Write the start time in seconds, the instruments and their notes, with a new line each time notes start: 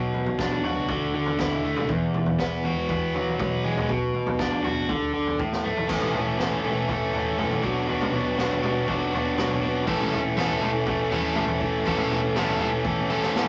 Already playing: overdriven electric guitar B2 F#3 F#4
0.14 picked electric bass B2, floor tom
0.26 picked electric bass B1, floor tom
0.39 picked electric bass B2, overdriven electric guitar D4, kick, snare
0.51 floor tom
0.63 picked electric bass B1, overdriven electric guitar F#4, floor tom
0.77 picked electric bass C#2
0.88 picked electric bass D2, overdriven electric guitar D3, kick, floor tom
1.14 picked electric bass D3, overdriven electric guitar D3
1.26 floor tom
1.39 picked electric bass D2, overdriven electric guitar E4, kick, snare
1.51 floor tom
1.64 picked electric bass D3, overdriven electric guitar A3
1.76 picked electric bass D2, floor tom, mid tom
1.89 picked electric bass E2, overdriven electric guitar E2, kick, floor tom
2.14 picked electric bass E3, floor tom, mid tom
2.26 picked electric bass E2, floor tom
2.39 picked electric bass E3, overdriven electric guitar B3, kick, snare
2.63 picked electric bass E2, overdriven electric guitar F#4, floor tom
2.76 picked electric bass E3
2.89 picked electric bass E2, overdriven electric guitar B3, kick, floor tom
3.14 picked electric bass E3, overdriven electric guitar F#3, floor tom
3.27 floor tom
3.39 picked electric bass E2, overdriven electric guitar B3, kick, mid tom
3.64 picked electric bass E3, overdriven electric guitar G#3
3.77 picked electric bass E2, floor tom, mid tom
3.89 picked electric bass B1, overdriven electric guitar B2, kick, floor tom
4.14 picked electric bass B2, floor tom
4.27 picked electric bass B1, floor tom
4.39 picked electric bass B2, overdriven electric guitar D4, kick, snare
4.51 floor tom
4.64 picked electric bass B1, overdriven electric guitar F#4, floor tom
4.76 picked electric bass A1
4.89 picked electric bass D2, overdriven electric guitar D3, kick, floor tom
5.14 picked electric bass B1, overdriven electric guitar D3
5.27 floor tom
5.38 picked electric bass A1, overdriven electric guitar A2, kick
5.53 snare
5.64 picked electric bass A2, overdriven electric guitar A3, mid tom
5.77 picked electric bass A1, floor tom
5.87 picked electric bass A1, overdriven electric guitar A2 E3 A3 C#4 A4, kick, floor tom, crash
6.02 mid tom
6.13 picked electric bass A2, overdriven electric guitar A3 C#4 A4, floor tom, mid tom
6.37 picked electric bass A1, overdriven electric guitar E3 A3 C#4 A4, snare
6.52 floor tom
6.62 picked electric bass A2, overdriven electric guitar A2 E3 A3 C#4 A4, mid tom
6.88 picked electric bass A1, overdriven electric guitar E3 A3 C#4 A4, kick, floor tom
7.13 picked electric bass A2, overdriven electric guitar A3 C#4 A4, floor tom
7.38 picked electric bass F#2, overdriven electric guitar A2 E3 A3 C#4 A4, mid tom
7.50 floor tom
7.63 picked electric bass B1, overdriven electric guitar B2 F#3 B3 D4 F#4, kick
7.87 picked electric bass B1, overdriven electric guitar B2 F#3 B3 D4 F#4, floor tom
8.01 mid tom
8.13 picked electric bass B2, overdriven electric guitar B3 D4 F#4, floor tom, mid tom
8.37 picked electric bass B1, overdriven electric guitar F#3 B3 D4 F#4, snare
8.51 floor tom
8.62 picked electric bass B2, overdriven electric guitar B2 F#3 B3 D4 F#4, mid tom
8.87 picked electric bass B1, overdriven electric guitar F#3 B3 D4 F#4, kick, floor tom
9.11 picked electric bass B2, overdriven electric guitar B3 D4 F#4, floor tom
9.36 picked electric bass B1, overdriven electric guitar B2 F#3 B3 D4 F#4, snare, mid tom
9.51 floor tom
9.61 picked electric bass B2, overdriven electric guitar B3 D4 F#4
9.86 picked electric bass A1, overdriven electric guitar A2 E3 A3 C#4 E4 A4, kick, floor tom
10.00 mid tom
10.11 picked electric bass A2, overdriven electric guitar A3 C#4 A4, floor tom, mid tom
10.36 picked electric bass A1, overdriven electric guitar E3 A3 C#4 E4 A4, snare
10.50 floor tom
10.61 picked electric bass A2, overdriven electric guitar A2 E3 A3 C#4 A4, mid tom
10.86 picked electric bass A1, overdriven electric guitar E3 A3 C#4 A4, kick, floor tom
11.11 picked electric bass A2, overdriven electric guitar A3 C#4 E4 A4, floor tom
11.35 picked electric bass A1, overdriven electric guitar A2 E3 A3 C#4 A4, mid tom
11.48 floor tom
11.61 picked electric bass A2, overdriven electric guitar A3 C#4 A4, kick
11.85 picked electric bass A1, overdriven electric guitar A2 E3 A3 C#4 E4 A4, kick, floor tom
11.97 mid tom
12.10 picked electric bass A2, overdriven electric guitar A3 C#4 A4, floor tom, mid tom
12.35 picked electric bass A1, overdriven electric guitar E3 A3 C#4 E4 A4, snare
12.48 floor tom
12.60 picked electric bass A2, overdriven electric guitar A2 E3 A3 C#4 A4, mid tom
12.84 picked electric bass A1, overdriven electric guitar E3 A3 C#4 A4, kick, high tom
12.98 high tom
13.10 picked electric bass A2, overdriven electric guitar A3 C#4 E4 A4
13.23 snare
13.33 picked electric bass A1, overdriven electric guitar A2 E3 A3 C#4 A4, snare